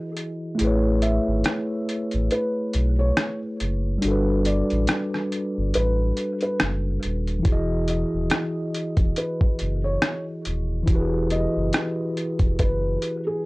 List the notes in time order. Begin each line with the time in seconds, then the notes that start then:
Already playing: E3 E4 F#4 G#4 D#5
0.17 closed hi-hat
0.55 A3 E4
0.59 A1 G#4, closed hi-hat
0.64 B4 C#5
1.02 E5, closed hi-hat
1.28 G#1
1.44 cross-stick, closed hi-hat
1.89 closed hi-hat
2.11 A1, closed hi-hat
2.31 B4, closed hi-hat
2.73 B1, closed hi-hat
2.99 C#5
3.17 cross-stick, closed hi-hat
3.60 F#1, closed hi-hat
3.98 G3 D4, closed hi-hat
4.04 G1 F#4 A4
4.11 B4
4.45 D5, closed hi-hat
4.70 A1, closed hi-hat
4.87 cross-stick, closed hi-hat
5.14 cross-stick
5.32 closed hi-hat
5.58 G1
5.74 A1 B4, closed hi-hat
6.17 closed hi-hat
6.41 B4, closed hi-hat
6.60 F#1, cross-stick, closed hi-hat
7.03 D#1, closed hi-hat
7.27 closed hi-hat
7.39 E3 E4
7.45 E1 F#4, kick, closed hi-hat
7.49 G#4 D#5
7.88 D#5, closed hi-hat
8.14 D#1
8.30 cross-stick, closed hi-hat
8.75 closed hi-hat
8.97 E1, kick, closed hi-hat
9.16 B4, closed hi-hat
9.41 kick
9.59 F#1, closed hi-hat
9.84 C#5
10.02 cross-stick, closed hi-hat
10.45 D#1, closed hi-hat
10.83 E3 E4
10.87 E1 F#4, kick, closed hi-hat
10.93 G4 B4
10.99 G#4
11.30 D#5, closed hi-hat
11.56 F#1
11.73 cross-stick, closed hi-hat
12.17 closed hi-hat
12.39 E1, kick, closed hi-hat
12.59 F#1 B4, kick, closed hi-hat
13.02 closed hi-hat
13.27 G#4